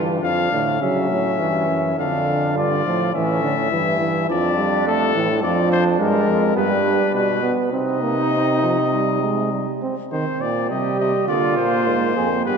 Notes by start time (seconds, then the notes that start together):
Already playing: G2 E3 D4
0.22 F2 F3 D4 F5
0.52 A2 D3
0.80 C#3 F#3 C#4 E5
1.11 A2
1.40 G2 E3
1.68 F#2
1.97 F2 D3 D4 F5
2.56 G2 F4 D5
2.85 A2 F3
3.14 A2 E3 C#4 E5
3.43 D3
3.71 G2 E3 E4
4.00 E3
4.29 F2 F3 D4 D5
4.57 G3
4.87 A3 A4
5.15 A2 E3
5.42 F2 F3 D4 D5
5.72 C5
5.99 G2 G#3 A#4
6.27 F2
6.54 G2 G3 B3 B4
6.83 D4
7.14 B2 B4
7.43 B3
7.71 C3 C4 D#4 D#5
8.03 A#3
8.33 C4
8.63 F3
8.93 G3
9.22 G#3
9.52 G3
9.82 C4
10.12 D#3 C4 C5
10.41 A#2 D5
10.68 C3 G3 G4 D#5
10.99 C3 D#5
11.27 D3 A#3 F4 D5
11.57 A#2 C5
11.87 G#2
12.16 F2 G#4
12.45 G2 B3 G4 B4